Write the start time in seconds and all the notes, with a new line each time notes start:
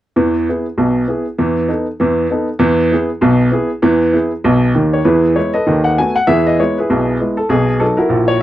0.16 E2 E3
0.49 B3 E4 G#4
0.78 B1 B2
1.08 B3 E4 G#4
1.38 E2 E3
1.69 B3 D#4 A4
2.00 E2 E3
2.31 B3 D#4 A4
2.59 E2 E3
2.92 B3 E4 G#4
3.21 B1 B2
3.52 B3 E4 G#4
3.82 E2 E3
4.13 B3 E4 G#4
4.44 B1 B2
4.75 D#2 D#3
4.93 C#5
5.05 E2 E3 E4 G#4 B4
5.36 G#3 B3 E4 C#5
5.54 A4 B4 D#5
5.67 D#2 D#3
5.84 F#5
5.98 A3 B3 F#4 G#5
6.16 F#5
6.27 E2 E3 G#4 B4 E5
6.47 D#5
6.60 G#3 B3 E4 C#5
6.78 E4 G#4 B4
6.90 B1 B2
7.21 G#3 B3 E4
7.37 A4
7.49 B1 B2 G#4
7.80 F#3 B3 D#4 A4
7.97 E4 F#4 A#4
8.09 A#1 A#2
8.28 C#5